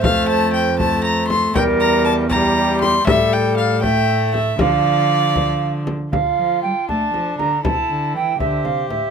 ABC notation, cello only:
X:1
M:6/8
L:1/8
Q:3/8=79
K:Dm
V:1 name="Cello" clef=bass
F,,6 | E,,6 | A,,6 | D,4- D, z |
D, F, G, A, F, D, | C, D, E, D, C, A,, |]